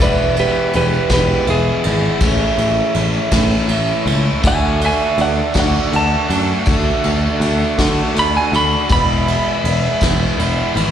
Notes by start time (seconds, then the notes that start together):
Already playing: E2 B2
0.00 E1 E3 G#3 B3 E4 B4 D5, kick, tambourine
0.36 E3 G#3 B3 E4 G4, ride
0.40 B4
0.73 E1 E3 G#3 B3 E4 G4 B4, ride
0.94 tambourine
1.09 E1 E2 B2 E3 G#3 B3 E4 B4, kick, snare, ride, tambourine
1.14 G4
1.46 E1 E3 G#3 B3 E4 G#4, ride
1.84 G#1 E3 G#3 B3 E4, ride
2.20 A1 A2 E3 A3 C#4 E4, kick, ride, tambourine
2.58 A1 A3 C#4 E4, ride, tambourine
2.77 tambourine
2.94 A1 E3 A3 C#4, ride
2.99 E4
3.14 tambourine
3.31 A2 E3 A3 C#4 E4, kick, snare, ride, tambourine
3.68 A1 E3 A3 C#4 E4, ride
3.88 tambourine
4.05 C#2 A3 C#4 E4, ride, tambourine
4.42 D2 D3 A3 D4 F#4 A4 F#5 D6, kick, crash, tambourine
4.47 E5 G#5
4.79 A3 D4 F#4, ride
4.85 E5 G#5
5.18 D2 D3 A3 D4 F#4 D5 F#5, ride
5.35 tambourine
5.53 D2 D3 A3 D4 F#4, kick, snare, ride, tambourine
5.59 D5 F#5
5.91 D2 D3 A3 D4 F#4, ride
5.96 A5
6.27 F#2 A3 D4 F#4, ride
6.66 D2 D3 A3 D4 F#4, kick, ride, tambourine
7.03 D2 A3 D4 F#4, ride
7.40 D2 D3 A3 D4 F#4, ride
7.59 tambourine
7.78 D3 A3 D4 F#4, kick, snare, ride, tambourine
8.15 D2 D3 A3 D4 F#4, ride
8.19 B5
8.37 G#5
8.52 D2 A3 D4 F#4 B5, ride
8.88 E1 E2 B2 E3 G#3 B3 E4 G#4 E5 B5, kick, ride, tambourine
8.92 B5
9.25 E3 G#3 B3 E4, ride
9.64 E1 E3 G#3 B3, ride
9.69 E4
9.83 tambourine
10.01 E1 E2 B2 E3 G#3 B3 E4, kick, snare, ride, tambourine
10.38 E1 E3 G#3 B3 E4, ride
10.74 G#1 E3 G#3 B3 E4, ride